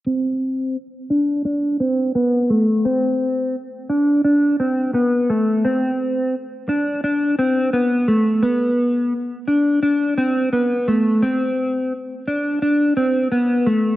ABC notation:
X:1
M:4/4
L:1/8
Q:1/4=86
K:Am
V:1 name="Clean electric guitar"
C2 z D D C B, A, | C2 z D D C B, A, | C2 z D D C B, A, | B,2 z D D C B, A, |
C2 z D D C B, A, |]